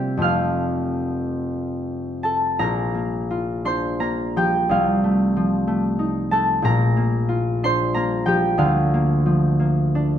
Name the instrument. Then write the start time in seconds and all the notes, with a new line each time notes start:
harp
Already playing: C3 G3 A#3 C4 G4 A#4 C5 E5 A#5 E6
0.17 F1 F2 A3 C4
0.22 F4 F5 F6
2.23 A4 A5
2.59 A#1 A#2 A#4 A#5
2.95 A#3
3.31 F4
3.65 D4 C5 C6
4.00 A#3 A#4 A#5
4.36 F3 G4 G5
4.69 C2 C3 F4 F5
5.04 A3
5.37 F3
5.67 A3
5.99 D#4
6.31 A3 A4 A5
6.62 A#1 A#2 A#4 A#5
6.97 A#3
7.29 F4
7.63 D4 C5 C6
7.94 A#3 A#4 A#5
8.26 F3 G4 G5
8.58 D2 D3 F4 F5
8.94 A#3
9.26 F3
9.60 A#3
9.95 D4